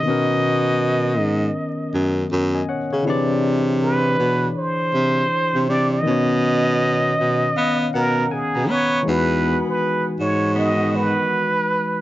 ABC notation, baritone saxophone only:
X:1
M:4/4
L:1/16
Q:"Swing 16ths" 1/4=80
K:E
V:1 name="Baritone saxophone" clef=bass
B,,6 G,,2 z2 F,,2 F,,2 z C, | =C,6 B,,2 z2 C,2 z C, C,2 | B,,6 B,,2 B,2 B,,2 B,, B,, B,2 | E,,3 z3 G,,4- G,, z4 z |]